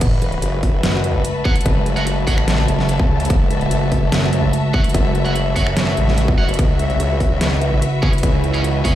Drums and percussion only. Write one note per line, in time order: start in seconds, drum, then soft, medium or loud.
0.01 kick loud
0.01 closed hi-hat medium
0.01 crash medium
0.22 closed hi-hat medium
0.32 closed hi-hat soft
0.42 closed hi-hat medium
0.63 kick medium
0.63 open hi-hat loud
0.83 snare loud
0.83 closed hi-hat medium
1.04 closed hi-hat medium
1.25 closed hi-hat medium
1.45 kick loud
1.56 closed hi-hat medium
1.61 closed hi-hat medium
1.66 kick loud
1.66 closed hi-hat medium
1.86 closed hi-hat medium
1.97 closed hi-hat soft
2.07 closed hi-hat medium
2.27 kick medium
2.27 open hi-hat medium
2.38 finger snap medium
2.48 snare loud
2.48 closed hi-hat medium
2.58 finger snap medium
2.68 closed hi-hat medium
2.79 snare soft
2.89 closed hi-hat medium
2.99 kick loud
3.20 closed hi-hat medium
3.25 closed hi-hat medium
3.30 kick loud
3.30 closed hi-hat medium
3.51 closed hi-hat medium
3.61 closed hi-hat soft
3.71 closed hi-hat medium
3.92 kick medium
3.92 open hi-hat medium
4.12 snare loud
4.12 closed hi-hat medium
4.33 closed hi-hat medium
4.53 closed hi-hat medium
4.74 kick loud
4.84 closed hi-hat soft
4.89 closed hi-hat medium
4.94 kick loud
4.94 closed hi-hat medium
5.15 closed hi-hat medium
5.25 closed hi-hat soft
5.36 closed hi-hat medium
5.56 kick medium
5.56 open hi-hat medium
5.67 finger snap medium
5.77 snare loud
5.77 closed hi-hat medium
5.87 finger snap medium
5.97 closed hi-hat medium
6.08 snare soft
6.18 closed hi-hat medium
6.28 kick loud
6.49 closed hi-hat soft
6.54 closed hi-hat medium
6.59 kick loud
6.59 closed hi-hat medium
6.79 closed hi-hat medium
6.90 closed hi-hat soft
7.00 closed hi-hat medium
7.20 kick medium
7.20 open hi-hat medium
7.41 snare loud
7.41 closed hi-hat medium
7.61 closed hi-hat medium
7.82 closed hi-hat medium
8.03 kick loud
8.13 closed hi-hat soft
8.18 closed hi-hat medium
8.23 kick loud
8.23 closed hi-hat medium
8.44 closed hi-hat medium
8.54 closed hi-hat soft
8.64 closed hi-hat medium
8.85 kick medium
8.85 open hi-hat medium